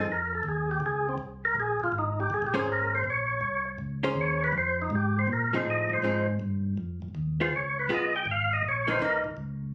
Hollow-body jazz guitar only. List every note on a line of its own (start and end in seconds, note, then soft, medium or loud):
2.54 3.02 A#3 medium
2.54 3.02 C#4 medium
2.54 3.02 G#4 medium
2.54 3.02 C5 medium
4.03 4.51 A#3 medium
4.03 4.51 C#4 medium
4.03 4.52 G#4 medium
4.03 4.52 C5 medium
5.53 6.01 F3 medium
5.53 6.01 C4 medium
5.53 6.01 D#4 medium
5.53 6.01 G#4 medium
6.03 6.25 F3 medium
6.03 6.26 C4 medium
6.03 6.26 D#4 medium
6.03 6.26 G#4 medium
7.40 7.51 B3 medium
7.40 7.52 F4 medium
7.40 7.52 G#4 medium
7.89 8.11 B3 medium
7.89 8.12 F4 medium
7.89 8.12 G#4 medium
8.87 8.99 E3 medium
8.87 9.00 A#3 medium
8.87 9.00 D#4 medium
9.00 9.23 E3 medium
9.00 9.23 A#3 medium
9.00 9.23 D#4 medium